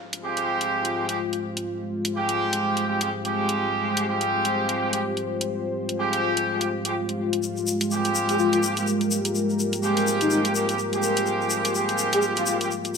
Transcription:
Already playing: analog synth pad G#3 F4 G4 C5
0.13 closed hi-hat
0.23 horn section G#3 C4 F4 G4
0.37 closed hi-hat
0.61 closed hi-hat
0.85 closed hi-hat
1.09 horn section G#3 C4 F4 G4, closed hi-hat
1.33 closed hi-hat
1.57 closed hi-hat
2.05 closed hi-hat
2.15 horn section G#3 C4 F4 G4
2.29 closed hi-hat
2.53 closed hi-hat
2.77 closed hi-hat
2.87 horn section G#3 C4 F4 G4
3.01 horn section G#3 C4 F4 G4, closed hi-hat
3.25 horn section G#3 C4 F4 G4, closed hi-hat
3.49 closed hi-hat
3.97 closed hi-hat
4.07 horn section G#3 C4 F4 G4
4.21 closed hi-hat
4.45 closed hi-hat
4.69 closed hi-hat
4.93 horn section G#3 C4 F4 G4, closed hi-hat
5.17 closed hi-hat
5.41 closed hi-hat
5.89 closed hi-hat
5.99 horn section G#3 C4 F4 G4
6.13 closed hi-hat
6.37 closed hi-hat
6.61 closed hi-hat
6.85 horn section G#3 C4 F4 G4, closed hi-hat
7.09 closed hi-hat
7.33 closed hi-hat
7.43 analog synth pad A#4, shaker
7.57 shaker
7.67 shaker
7.81 closed hi-hat, shaker
7.91 horn section G#3 C4 F4 G4, shaker
8.05 closed hi-hat, shaker
8.15 shaker
8.29 soft synth lead G#4, closed hi-hat, shaker
8.39 soft synth lead F4, shaker
8.53 soft synth lead F4, closed hi-hat, shaker
8.63 shaker
8.77 horn section G#3 C4 F4 G4, closed hi-hat, shaker
8.87 shaker
9.01 closed hi-hat, shaker
9.11 shaker
9.25 closed hi-hat, shaker
9.35 shaker
9.50 shaker
9.59 shaker
9.73 closed hi-hat, shaker
9.83 horn section G#3 C4 F4 G4, shaker
9.97 closed hi-hat, shaker
10.07 shaker
10.21 soft synth lead D#4, closed hi-hat, shaker
10.30 soft synth lead D#4, shaker
10.45 closed hi-hat, shaker
10.55 horn section G#3 C4 F4 G4, shaker
10.69 horn section G#3 C4 F4 G4, closed hi-hat, shaker
10.79 shaker
10.93 horn section G#3 C4 F4 G4, closed hi-hat, shaker
11.03 shaker
11.17 closed hi-hat, shaker
11.26 shaker
11.41 shaker
11.50 shaker
11.65 closed hi-hat, shaker
11.75 horn section G#3 C4 F4 G4, shaker
11.89 closed hi-hat, shaker
11.98 shaker
12.13 soft synth lead G#4, closed hi-hat, shaker
12.22 shaker
12.36 soft synth lead F4, closed hi-hat, shaker
12.46 soft synth lead F4, shaker
12.61 horn section G#3 C4 F4 G4, closed hi-hat, shaker
12.71 shaker
12.85 closed hi-hat, shaker

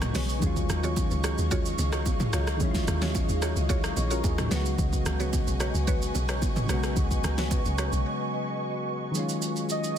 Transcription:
Already playing: log drum bass C#2, synth keys F#3 G#3 B3 F#4, ambient pad B4 D#5 G#5 C#6
0.02 cross-stick, mid tom, low bongo, shaker
0.13 log drum bass B1, synth keys C#3 F#3 G#3 B3 G#4, synth pluck F#4 B4 C#5, snare, open hi-hat, low bongo, shaker
0.29 shaker
0.39 log drum bass D#2, synth keys D#3 F#3 G#3, ambient pad G#4 D#5 F5, kick, low conga, shaker
0.44 synth keys C#4 F4
0.56 kick, shaker
0.69 log drum bass D#2, cross-stick, low conga, shaker
0.83 synth pluck F4 F#4 G#4 C#5, low bongo, shaker
0.96 kick, high bongo, shaker
1.11 log drum bass C#2, shaker
1.24 synth pluck F4 F#4 G#4 C#5, cross-stick, shaker
1.38 log drum bass D#2, shaker
1.51 synth pluck F4 F#4 G#4 C#5, kick, low conga, shaker
1.66 shaker
1.78 log drum bass C#2, low bongo, shaker
1.92 synth pluck F4 F#4 G#4 C#5, cross-stick, shaker
2.06 kick, high bongo, shaker
2.20 mid tom, low bongo, shaker
2.33 log drum bass C#2, synth pluck F4 F#4 G#4 C#5, cross-stick, shaker
2.47 cross-stick, shaker
2.57 log drum bass D#2, synth keys D#3 F#3 G#3, kick, low conga, shaker
2.63 synth keys C#4 E4
2.71 synth keys F4, kick, snare, shaker
2.88 log drum bass D#2, cross-stick, low conga, shaker
3.02 synth pluck F4 F#4 G#4 C#5, snare, low bongo, shaker
3.15 kick, high bongo, shaker
3.29 log drum bass D#2, shaker
3.42 synth pluck F4 F#4 G#4 C#5, cross-stick, shaker
3.56 log drum bass C#2, shaker
3.69 synth pluck F4 F#4 G#4 C#5, kick, low conga, shaker
3.84 cross-stick, shaker
3.97 log drum bass A#1, synth keys F4 C#5, low bongo, shaker
4.10 synth keys C#4 A#4, synth pluck F4 F#4 G#4 C#5, shaker
4.24 log drum bass D#2, synth keys G#4, kick, high bongo, shaker
4.38 synth keys F#3 D#4, cross-stick, mid tom, low bongo, shaker
4.48 log drum bass C#2, synth keys C#3 F#3 G#3, synth pluck F#4 B4 C#5, ambient pad B4 G#5 C#6, snare, shaker
4.53 synth keys B3 F#4
4.66 shaker
4.79 log drum bass C#2, kick, low conga, shaker
4.93 kick, shaker
5.06 log drum bass C#2, cross-stick, low conga, shaker
5.20 synth pluck F#4 B4 C#5, low bongo, shaker
5.33 kick, high bongo, shaker
5.47 log drum bass B1, shaker
5.60 synth pluck F#4 B4 C#5, cross-stick, shaker
5.75 log drum bass C#2, shaker
5.87 synth pluck F#4 B4 C#5, kick, low conga, shaker
6.02 shaker
6.15 log drum bass B1, low bongo, shaker
6.29 synth pluck F#4 B4 C#5, cross-stick, shaker
6.42 kick, high bongo, shaker
6.56 mid tom, low bongo, shaker
6.66 log drum bass B1, synth keys C#3 F#3 G#3, synth pluck F#4 B4 C#5, cross-stick, shaker
6.72 synth keys B3 F#4
6.83 cross-stick, shaker
6.97 log drum bass C#2, kick, low conga, shaker
7.11 kick, shaker
7.24 log drum bass C#2, cross-stick, low conga, shaker
7.38 synth pluck F#4 B4 C#5, snare, low bongo, shaker
7.51 kick, high bongo, shaker
7.65 log drum bass C#2, shaker
7.78 synth pluck F#4 B4 C#5, cross-stick, shaker
7.93 log drum bass B1, shaker
9.11 synth keys D#3 F#3 G#3, ambient pad D#4 G#4 F5 G#5 C#6, shaker
9.17 synth keys C#4 F4
9.29 shaker
9.42 shaker
9.56 shaker
9.70 soft synth lead D#5, shaker
9.84 shaker

